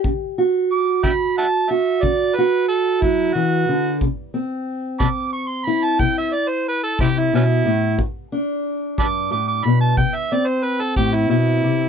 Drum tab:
BD |o--o--o--o--|o--o--o--o--|o--o--o--o--|